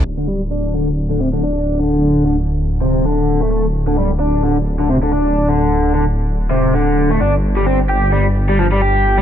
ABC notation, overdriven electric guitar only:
X:1
M:4/4
L:1/16
Q:"Swing 16ths" 1/4=130
K:Gdor
V:1 name="Overdriven electric guitar" clef=bass
z D, G, z D2 D, z2 D, C, D, D3 D,- | D,3 D, z4 C,2 D,3 A, A, z | z D, G, z D2 D, z2 D, C, D, D3 D,- | D,3 D, z4 C,2 D,3 A, D z |
z G, C z G2 G, z2 G, F, G, G3 G, |]